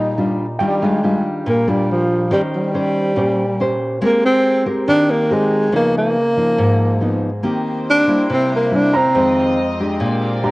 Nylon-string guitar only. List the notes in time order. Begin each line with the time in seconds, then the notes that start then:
Already playing: A#2 G3 F4
0.18 G3 D4 F4
0.60 D#3 G3 D4 F4
0.82 G3 D4 F4
1.04 G3 D4 F4
1.46 A#2
1.68 G3 D4 F4
2.31 D#3 C#4 G4 C5
2.74 C#4 G4 C5
3.16 A#2 C#4 G4 C5
3.60 C#4 G4 C5
4.01 G#3 C4 G4 A#4
4.66 C4 G4 A#4
4.88 D#3
5.30 C4 G4 A#4
5.72 C#3 F3 B3 D#4
6.37 F3 D#4
6.58 G#2
7.01 F3 B3 D#4
7.43 D#3 A#3 C4 G4
8.07 G3 A#3 E4
8.30 C3
8.72 G3 A#3 E4
9.15 F2 D#3 G#3 C4
9.80 G#3 D4 G4
10.00 A#2
10.43 G#3 D4 G4